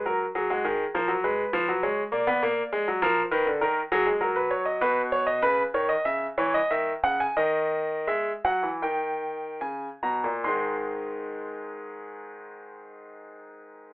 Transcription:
<<
  \new Staff \with { instrumentName = "Grand piano" } { \time 4/4 \key dis \phrygian \tempo 4 = 94 ais'8 gis'16 fis'16 gis'8 ais'8 b'4 cis''8 d''8~ | d''4 ais'8 b'8 ais'8 gis'8 ais'16 b'16 cis''16 dis''16 | b'8 cis''16 dis''16 b'8 cis''16 dis''16 e''8 cis''16 dis''16 e''8 fis''16 gis''16 | dis''4 e''8 fis''8 g''4 gis''8 ais''8 |
<dis gis bis''>1 | }
  \new Staff \with { instrumentName = "Grand piano" } { \clef bass \time 4/4 \key dis \phrygian fis8 fis16 gis16 dis8 eis16 fis16 gis8 eis16 fis16 gis8 ais16 b16 | ais8 gis16 fis16 eis8 dis16 d16 dis8 fis16 gis16 fis4 | b,4 cis8 dis8 cis8 e8 dis8 cis8 | dis4 gis8 fis16 e16 dis4 cis8 b,16 ais,16 |
gis,1 | }
>>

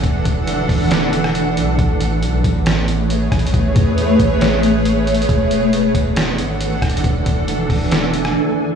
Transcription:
<<
  \new Staff \with { instrumentName = "Ambient pad" } { \time 4/4 \key a \major \tempo 4 = 137 <e d' a' fis''>1 | <a gis' b' cis''>1~ | <a gis' b' cis''>1 | <e d' a'>1~ |
<e d' a'>1 | }
  \new Staff \with { instrumentName = "808-style bass" } { \clef bass \time 4/4 \key a \major e,,8 e,,4 e,,2 b,,8 | a,,4 b,,8 a,,2 a,,8 | a,,8 e,4 a,,2~ a,,8 | e,,4. e,,4 gis,,4 e,,8 |
e,,8 e,,4 e,,4. r4 | }
  \new DrumStaff \with { instrumentName = "Drums" } \drummode { \time 4/4 <hh bd>8 <hh bd>8 hh8 <hho bd>8 <hh sn>8 hh16 ss16 hh8 hh8 | <hh bd>8 hh8 hh8 <hh bd>8 <hh sn>8 hh8 \tuplet 3/2 { hh16 r16 r16 <hh bd ss>16 hh16 hh16 } | <hh bd>8 <hh bd>8 hh8 <hh bd>8 <hh sn>8 hh8 \tuplet 3/2 { hh16 r16 r16 hh16 hh16 hh16 } | <hh bd>8 hh8 hh8 <hh bd>8 <hh sn>8 hh8 \tuplet 3/2 { hh16 r16 r16 <hh bd ss>16 hh16 hh16 } |
<hh bd>8 <hh bd>8 hh8 <hho bd>8 <hh sn>8 hh16 ss16 r4 | }
>>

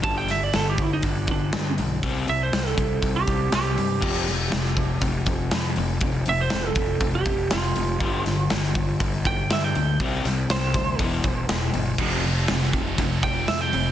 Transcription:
<<
  \new Staff \with { instrumentName = "Lead electric guitar" } { \time 4/4 \key f \lydian \tempo 4 = 121 a''16 g''16 e''16 d''16 a'16 g'16 e'16 dis'16 d'8 d'4 r8 | r8 e''16 c''8 a'4 g'8. g'4~ | g'2 r2 | r8 e''16 c''8 a'4 g'8. f'4~ |
f'2 r8 g''8 e''16 g''8.~ | g''4 c''4 r2 | r2 r8 g''8 e''16 g''8. | }
  \new Staff \with { instrumentName = "Distorted electric guitar" } { \clef bass \time 4/4 \key f \lydian r1 | r1 | r1 | r1 |
r1 | r1 | <f, c f>2~ <f, c f>8 <f, c f>8 <f, c f>4 | }
  \new Staff \with { instrumentName = "Overdriven electric guitar" } { \clef bass \time 4/4 \key f \lydian <g, d g>8 <g, d>8 <g, d>8 <g, d>8 <g, d>8 <g, d>8 <g, d>8 <g, d>8 | <c g c'>8 <c g>8 <c g>8 <c g>8 <c g>8 <c g>8 <c g>8 <c g>8 | <f, c f>8 <f, c>8 <f, c>8 <f, c>8 <f, c>8 <f, c>8 <f, c>8 <f, c>8 | <f, c>8 <f, c>8 <f, c>8 <f, c>8 <f, c>8 <f, c>8 <f, c>8 <f, c>8 |
<g, d g>8 <g, d>8 <g, d>8 <g, d>8 <g, d>8 <g, d>8 <g, d>8 <g, d>8 | <c g c'>8 <c g>8 <c g>8 <c g>8 <e, b, e>8 <e, b,>8 <e, b,>8 <e, b,>8 | <f, c f>8 <f, c>8 <f, c>8 <f, c>8 <f, c>8 <f, c>8 <f, c>8 <f, c>8 | }
  \new Staff \with { instrumentName = "Overdriven electric guitar" } { \clef bass \time 4/4 \key f \lydian r1 | r1 | r1 | r1 |
r1 | r1 | <f, c f>8 <f, c>8 <f, c>8 <f, c>8 <f, c>8 <f, c>8 <f, c>8 <f, c>8 | }
  \new Staff \with { instrumentName = "Fingered electric bass" } { \clef bass \time 4/4 \key f \lydian g,,4 g,,4 g,,4 g,8 b,,8 | c,8 c,8 c,8 c,8 c,8 c,8 c,8 g,8 | f,,4 f,,4 f,,4 f,8 f,,8 | f,,8 f,,8 f,,8 f,,8 f,,8 f,,8 f,,8 f,,8 |
g,,4 g,,4 g,,4 g,8 d,8 | c,8 c,8 c,8 d,8 e,,8 e,,8 e,,8 g,,8 | f,,4 f,,4 f,,4 f,8 f,,8 | }
  \new DrumStaff \with { instrumentName = "Drums" } \drummode { \time 4/4 <hho bd>8 <hho sn>8 <hho sn>8 <hho bd>8 <hho bd>8 <hho bd>8 <hho sn>8 hho8 | <hho bd>8 hho8 <hho sn>16 sn16 <hho bd>8 <hho bd>8 <hho bd>8 <hho sn>8 hho8 | <cymc bd>8 <hho sn>8 <hho sn>16 sn16 <hho bd>8 <hho bd>8 <hho bd>8 <hho sn>8 hho8 | <hho bd>8 hho8 <hho sn>8 <hho bd>8 <hho bd>8 <hho bd>8 <hho sn>8 hho8 |
<hho bd>8 <hho sn>8 <hho sn>16 sn16 <hho bd>8 <hho bd>8 <hho bd>8 <hho sn>8 hho8 | <hho bd>8 <hho sn>8 <hho sn>8 <hho bd>8 <hho bd>8 <hho bd>8 <hho sn>8 hho8 | <cymc bd>8 hho8 <hho sn>16 sn16 <hho bd>8 <hho bd>8 <hho bd>8 <hho sn>8 hho8 | }
>>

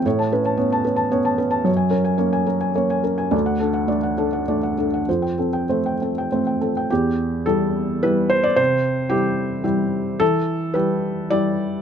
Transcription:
\new Staff \with { instrumentName = "Felt piano" } { \time 3/4 \key e \minor \tempo 4 = 108 << { cis''16 a''16 b'16 a''16 cis''16 a''16 b'16 a''16 cis''16 a''16 b'16 a''16 | cis''16 gis''16 ais'16 gis''16 cis''16 gis''16 ais'16 gis''16 cis''16 gis''16 ais'16 gis''16 | d''16 fis''16 a'16 fis''16 d''16 fis''16 a'16 fis''16 d''16 fis''16 a'16 fis''16 | c''16 g''16 a'16 g''16 c''16 g''16 a'16 g''16 c''16 g''16 a'16 g''16 |
g'4 a'4 b'8 c''16 d''16 | c''4 g'2 | a'4 b'4 d''4 | } \\ { a,8 cis'8 <b cis'>8 cis'8 <b cis'>8 cis'8 | fis,8 cis'8 <ais cis'>8 cis'8 <ais cis'>8 cis'8 | d,8 d'8 <a d'>8 d'8 <a d'>8 d'8 | f,8 c'8 <a c'>8 c'8 <a c'>8 c'8 |
e,4 <g e' g'>4 <g e' g'>4 | c4 <g e'>4 <g e' g'>4 | e4 <g e' g'>4 <g e' g'>4 | } >> }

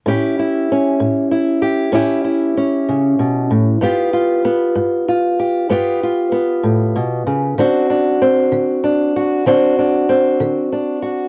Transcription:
\new Staff \with { instrumentName = "Steel-string acoustic guitar" } { \time 12/8 \key a \mixolydian \tempo 4. = 64 << { <cis' e' g'>8 e'8 cis'4 e'8 g'8 <cis' e' g'>8 e'8 cis'2 | <b f' g'>8 f'8 b4 f'8 g'8 <b f' g'>8 f'8 b2 | <c' d' fis'>8 d'8 c'4 d'8 fis'8 <c' d' fis'>8 d'8 c'4 d'8 fis'8 | } \\ { a,4 r8 a,4 r8 a,4 r8 cis8 b,8 a,8 | g,4 r8 g,4 r8 g,4 r8 a,8 b,8 cis8 | d4 r8 d4 r8 d4 r8 d4 r8 | } >> }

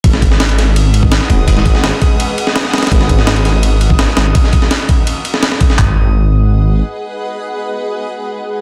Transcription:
<<
  \new Staff \with { instrumentName = "Synth texture" } { \time 4/4 \key gis \minor \tempo 4 = 167 dis'''1~ | dis'''1~ | dis'''1~ | dis'''1 |
r1 | r1 | }
  \new Staff \with { instrumentName = "Ambient pad" } { \time 4/4 \key gis \minor <gis' b' dis'' fis''>1~ | <gis' b' dis'' fis''>1 | <fis' ais' dis'' fis''>1 | r1 |
<gis' b' dis'' fis''>1~ | <gis' b' dis'' fis''>1 | }
  \new Staff \with { instrumentName = "Detuned saw bass" } { \clef bass \time 4/4 \key gis \minor gis,,2. r8 gis,,8~ | gis,,4 gis,,8 r2 r8 | gis,,2. r8 gis,,8 | r1 |
gis,,2. r4 | r1 | }
  \new DrumStaff \with { instrumentName = "Drums" } \drummode { \time 4/4 <bd cymr>16 sn16 <bd cymr>16 sn16 <cymr sn>16 cymr16 <cymr sn>8 cymr8 cymr16 bd16 <cymr sn>16 sn16 <bd cymr>8 | <bd cymr>16 sn16 <bd cymr>16 sn16 <cymr sn>8 <bd cymr>8 cymr8 cymr16 sn16 <cymr sn>16 sn16 <cymr sn>32 <cymr sn>32 <cymr sn>32 <cymr sn>32 | <bd cymr>16 sn16 <bd cymr>16 sn16 <cymr sn>16 cymr16 <cymr sn>8 cymr8 cymr16 bd16 <cymr sn>16 sn16 <cymr sn>8 | <bd cymr>16 sn16 <bd cymr>16 sn16 <cymr sn>8 <bd cymr>8 cymr8 cymr16 sn16 <cymr sn>16 sn16 <bd cymr>16 sn16 |
<hc bd tomfh>4 r4 r4 r4 | r4 r4 r4 r4 | }
>>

